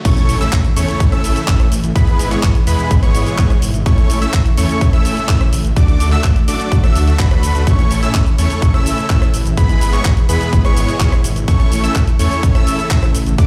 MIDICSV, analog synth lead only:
0, 0, Header, 1, 2, 480
1, 0, Start_track
1, 0, Key_signature, 3, "major"
1, 0, Tempo, 476190
1, 51, Time_signature, 4, 2, 24, 8
1, 13575, End_track
2, 0, Start_track
2, 0, Title_t, "Analog synth lead"
2, 0, Program_c, 0, 81
2, 51, Note_on_c, 0, 85, 104
2, 382, Note_off_c, 0, 85, 0
2, 411, Note_on_c, 0, 88, 108
2, 548, Note_off_c, 0, 88, 0
2, 771, Note_on_c, 0, 85, 88
2, 1102, Note_off_c, 0, 85, 0
2, 1131, Note_on_c, 0, 88, 97
2, 1463, Note_off_c, 0, 88, 0
2, 1491, Note_on_c, 0, 88, 97
2, 1629, Note_off_c, 0, 88, 0
2, 1971, Note_on_c, 0, 83, 102
2, 2302, Note_off_c, 0, 83, 0
2, 2331, Note_on_c, 0, 85, 112
2, 2468, Note_off_c, 0, 85, 0
2, 2692, Note_on_c, 0, 83, 96
2, 3023, Note_off_c, 0, 83, 0
2, 3051, Note_on_c, 0, 85, 99
2, 3383, Note_off_c, 0, 85, 0
2, 3411, Note_on_c, 0, 85, 100
2, 3548, Note_off_c, 0, 85, 0
2, 3892, Note_on_c, 0, 85, 98
2, 4223, Note_off_c, 0, 85, 0
2, 4251, Note_on_c, 0, 88, 116
2, 4389, Note_off_c, 0, 88, 0
2, 4612, Note_on_c, 0, 85, 90
2, 4943, Note_off_c, 0, 85, 0
2, 4972, Note_on_c, 0, 88, 101
2, 5303, Note_off_c, 0, 88, 0
2, 5332, Note_on_c, 0, 88, 105
2, 5469, Note_off_c, 0, 88, 0
2, 5812, Note_on_c, 0, 86, 106
2, 6143, Note_off_c, 0, 86, 0
2, 6171, Note_on_c, 0, 88, 115
2, 6309, Note_off_c, 0, 88, 0
2, 6531, Note_on_c, 0, 86, 93
2, 6863, Note_off_c, 0, 86, 0
2, 6891, Note_on_c, 0, 88, 98
2, 7107, Note_off_c, 0, 88, 0
2, 7131, Note_on_c, 0, 88, 90
2, 7233, Note_off_c, 0, 88, 0
2, 7251, Note_on_c, 0, 83, 96
2, 7702, Note_off_c, 0, 83, 0
2, 7732, Note_on_c, 0, 85, 98
2, 8063, Note_off_c, 0, 85, 0
2, 8091, Note_on_c, 0, 88, 107
2, 8228, Note_off_c, 0, 88, 0
2, 8451, Note_on_c, 0, 85, 91
2, 8783, Note_off_c, 0, 85, 0
2, 8811, Note_on_c, 0, 88, 98
2, 9142, Note_off_c, 0, 88, 0
2, 9171, Note_on_c, 0, 88, 98
2, 9308, Note_off_c, 0, 88, 0
2, 9651, Note_on_c, 0, 83, 103
2, 9982, Note_off_c, 0, 83, 0
2, 10011, Note_on_c, 0, 85, 115
2, 10148, Note_off_c, 0, 85, 0
2, 10371, Note_on_c, 0, 83, 90
2, 10702, Note_off_c, 0, 83, 0
2, 10731, Note_on_c, 0, 85, 105
2, 11063, Note_off_c, 0, 85, 0
2, 11091, Note_on_c, 0, 85, 95
2, 11229, Note_off_c, 0, 85, 0
2, 11571, Note_on_c, 0, 85, 104
2, 11903, Note_off_c, 0, 85, 0
2, 11931, Note_on_c, 0, 88, 113
2, 12068, Note_off_c, 0, 88, 0
2, 12291, Note_on_c, 0, 85, 93
2, 12623, Note_off_c, 0, 85, 0
2, 12651, Note_on_c, 0, 88, 103
2, 12982, Note_off_c, 0, 88, 0
2, 13012, Note_on_c, 0, 88, 100
2, 13149, Note_off_c, 0, 88, 0
2, 13492, Note_on_c, 0, 86, 103
2, 13575, Note_off_c, 0, 86, 0
2, 13575, End_track
0, 0, End_of_file